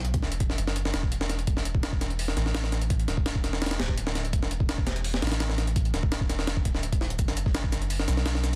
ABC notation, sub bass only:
X:1
M:4/4
L:1/8
Q:1/4=168
K:Dlyd
V:1 name="Sub bass" clef=bass
B,,, E,,,2 F,,,2 E,,,3 | E,,,3 E,,,2 A,,,3- | A,,, D,,,2 E,,,2 D,,,3 | E,,,3 E,,,2 A,,,3- |
A,,, D,,,2 E,,,2 D,,,3 | F,,,3 F,,,2 B,,,3 |]